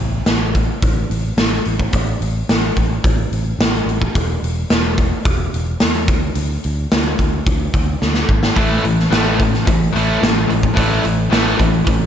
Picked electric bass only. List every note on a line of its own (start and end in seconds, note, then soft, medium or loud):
0.00 0.19 A1 medium
0.27 0.68 A1 medium
0.83 1.03 A1 medium
1.10 1.31 A1 medium
1.37 1.58 A1 medium
1.66 1.87 A1 medium
1.94 2.14 A1 medium
2.21 2.42 A1 medium
2.49 2.70 A1 medium
2.77 2.97 A1 medium
3.04 3.25 A1 medium
3.32 3.53 A1 medium
3.59 3.80 A1 medium
3.86 4.07 A1 medium
4.15 4.36 E1 medium
4.43 4.63 E1 medium
4.71 5.12 E1 medium
5.26 5.46 E1 medium
5.54 5.74 E1 medium
5.82 6.08 E2 medium
6.08 6.29 D2 medium
6.36 6.56 D2 medium
6.65 6.85 D2 medium
6.93 7.13 D2 medium
7.19 7.40 D2 medium
7.47 7.67 D2 medium
7.74 7.95 D2 medium
8.02 8.23 D2 medium
8.29 8.50 G#1 medium
8.57 8.78 A1 medium
8.84 9.05 A1 medium
9.12 9.53 A1 medium
9.68 9.88 A1 medium
9.95 10.16 A1 medium
10.23 10.43 A1 medium
10.49 10.70 A1 medium
10.77 10.98 A1 medium
11.04 11.25 A1 medium
11.32 11.53 A1 medium
11.59 11.80 A1 medium
11.88 12.06 A1 medium